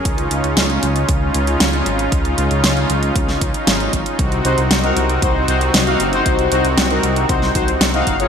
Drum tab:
HH |xxxxxxxxx-xxxxxx|xxxxxxxxx-xxxxxx|xxxxxxxxx-xxxxxx|xxxxxxxxx-xxxxxx|
SD |----o-------o---|----o----o--o---|----o-------o---|----o----o--o---|
BD |o-------o-------|o-------o-o---o-|o-------o-------|o-------o-o---o-|